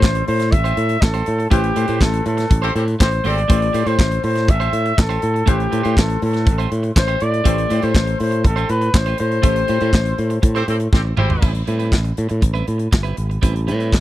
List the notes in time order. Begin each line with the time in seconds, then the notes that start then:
Already playing: A3 E4 G4 C5 D5
0.02 A1, muted clean electric guitar stroke, kick, snare, clap
0.15 muted clean electric guitar stroke, closed hi-hat
0.27 A2 C5, open hi-hat
0.40 muted clean electric guitar stroke, snare, closed hi-hat
0.52 A1 E5, muted clean electric guitar stroke, kick, closed hi-hat
0.64 A3 E4 G4 C5, closed hi-hat
0.77 A2, muted clean electric guitar stroke, closed hi-hat
0.89 muted clean electric guitar stroke, closed hi-hat
1.02 A1 A4, muted clean electric guitar stroke, kick, snare, clap
1.14 A3 E4 G4 C5, closed hi-hat
1.26 A2, muted clean electric guitar stroke, closed hi-hat
1.39 muted clean electric guitar stroke, closed hi-hat
1.50 A1 A3 E4 G4 B4 C5, kick, closed hi-hat
1.63 muted clean electric guitar stroke, closed hi-hat
1.75 A2 A3 E4 G4 C5, closed hi-hat
1.88 A2 A3 E4 G4 C5, closed hi-hat
2.01 A1 A4, muted clean electric guitar stroke, kick, snare, clap
2.13 muted clean electric guitar stroke, closed hi-hat
2.26 A2 A4, closed hi-hat
2.37 muted clean electric guitar stroke, snare, closed hi-hat
2.50 A1, muted clean electric guitar stroke, kick, closed hi-hat
2.62 A3 C4 E4 G4 A4 C5, closed hi-hat
2.74 A2 C4 G4 A4 C5, muted clean electric guitar stroke, closed hi-hat
2.87 muted clean electric guitar stroke, closed hi-hat
2.99 A1 C4 G4 A4 C5, muted clean electric guitar stroke, kick, snare, clap
3.11 muted clean electric guitar stroke, closed hi-hat
3.24 G#1 A3 C4 E4 G4 A4 C5 D5, open hi-hat
3.36 muted clean electric guitar stroke, closed hi-hat
3.48 A1 A3 E4 G4 C5 D5, kick, closed hi-hat
3.61 muted clean electric guitar stroke, closed hi-hat
3.73 A2 A3 E4 G4 C5, closed hi-hat
3.86 A2 A3 E4 G4 C5, closed hi-hat
3.98 A1, muted clean electric guitar stroke, kick, snare, clap
4.11 muted clean electric guitar stroke, closed hi-hat
4.24 A2 C5, open hi-hat
4.35 muted clean electric guitar stroke, snare, closed hi-hat
4.48 A1 E5, muted clean electric guitar stroke, kick, closed hi-hat
4.60 A3 E4 G4 C5, closed hi-hat
4.73 A2, muted clean electric guitar stroke, closed hi-hat
4.86 muted clean electric guitar stroke, closed hi-hat
4.97 A1 A4, muted clean electric guitar stroke, kick, snare, clap
5.09 A3 E4 G4 C5, closed hi-hat
5.21 A2, muted clean electric guitar stroke, closed hi-hat
5.34 muted clean electric guitar stroke, closed hi-hat
5.46 A1 A3 E4 G4 B4 C5, kick, closed hi-hat
5.58 muted clean electric guitar stroke, closed hi-hat
5.71 A2 A3 E4 G4 C5, closed hi-hat
5.83 A2 A3 E4 G4 C5, closed hi-hat
5.96 A1 A4, muted clean electric guitar stroke, kick, snare, clap
6.08 muted clean electric guitar stroke, closed hi-hat
6.22 A2 A4, open hi-hat
6.34 muted clean electric guitar stroke, snare, closed hi-hat
6.46 A1, muted clean electric guitar stroke, kick, closed hi-hat
6.58 A3 E4 G4 C5, closed hi-hat
6.71 A2, muted clean electric guitar stroke, closed hi-hat
6.83 muted clean electric guitar stroke, closed hi-hat
6.96 A1 C5, muted clean electric guitar stroke, kick, snare, clap
7.08 A3 E4 G4 C5, closed hi-hat
7.20 A2 D5, muted clean electric guitar stroke, closed hi-hat
7.32 muted clean electric guitar stroke, closed hi-hat
7.44 A1 A3 E4 G4 A4 C5, kick, closed hi-hat
7.57 muted clean electric guitar stroke, closed hi-hat
7.69 A2 A3 E4 G4 C5, closed hi-hat
7.81 A2 A3 E4 G4 C5, closed hi-hat
7.94 A1, muted clean electric guitar stroke, kick, snare, clap
8.06 muted clean electric guitar stroke, closed hi-hat
8.20 A2 C5, open hi-hat
8.31 muted clean electric guitar stroke, closed hi-hat
8.44 A1 A4, muted clean electric guitar stroke, kick, closed hi-hat
8.56 A3 E4 G4 C5, closed hi-hat
8.69 A2 B4, muted clean electric guitar stroke, closed hi-hat
8.81 muted clean electric guitar stroke, closed hi-hat
8.94 A1 C5, muted clean electric guitar stroke, kick, snare, clap
9.06 A3 E4 G4 C5, closed hi-hat
9.18 A2 C5, muted clean electric guitar stroke, closed hi-hat
9.31 muted clean electric guitar stroke, closed hi-hat
9.42 A1 A3 E4 G4 A4 C5, kick, closed hi-hat
9.56 muted clean electric guitar stroke, closed hi-hat
9.68 A2 A3 E4 G4 C5, closed hi-hat
9.80 A2 A3 E4 G4 C5, closed hi-hat
9.93 A1, muted clean electric guitar stroke, kick, snare, clap
10.05 muted clean electric guitar stroke, closed hi-hat
10.18 A2, closed hi-hat
10.30 muted clean electric guitar stroke, closed hi-hat
10.42 A2, muted clean electric guitar stroke, kick, closed hi-hat
10.55 A3 C4 E4 G4 A4 C5, closed hi-hat
10.67 A2 C4 G4 A4 C5, muted clean electric guitar stroke, closed hi-hat
10.80 muted clean electric guitar stroke, closed hi-hat
10.93 A1 C4 G4 A4 C5, kick, snare
11.05 muted clean electric guitar stroke
11.17 G#1 A3 C4 E4 G4 C5, mid tom
11.30 muted clean electric guitar stroke, floor tom
11.41 A1 G3 C4 E4 B4, kick, crash
11.54 muted clean electric guitar stroke, closed hi-hat
11.66 A2 G3 C4 E4 B4, closed hi-hat
11.79 G3 C4 E4 B4, closed hi-hat
11.92 A1, kick, snare, clap
12.04 muted clean electric guitar stroke, closed hi-hat
12.17 A2, closed hi-hat
12.29 A2, muted clean electric guitar stroke, closed hi-hat
12.42 A1, muted clean electric guitar stroke, kick, closed hi-hat
12.54 G3 C4 E4 B4, closed hi-hat
12.66 A2, muted clean electric guitar stroke, closed hi-hat
12.78 muted clean electric guitar stroke, closed hi-hat
12.91 G1, muted clean electric guitar stroke, kick, snare, clap
13.03 G3 C4 E4 B4, closed hi-hat
13.17 G#1, muted clean electric guitar stroke, closed hi-hat
13.30 muted clean electric guitar stroke, closed hi-hat
13.42 A1 G3 C4 E4 B4, kick, closed hi-hat
13.55 muted clean electric guitar stroke, closed hi-hat
13.67 A2 G3 C4 E4 B4, closed hi-hat
13.79 G3 C4 E4 B4, closed hi-hat
13.92 A1, muted clean electric guitar stroke, kick, snare, clap